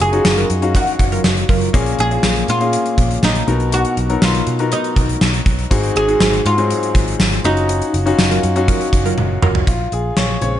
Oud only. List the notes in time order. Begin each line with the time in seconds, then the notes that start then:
0.01 G#4
0.76 F#4
2.00 G#4
2.50 F4
3.24 D#4
3.74 F#4
4.24 F4
4.73 D#4
5.97 G#4
6.46 F4
7.45 D#4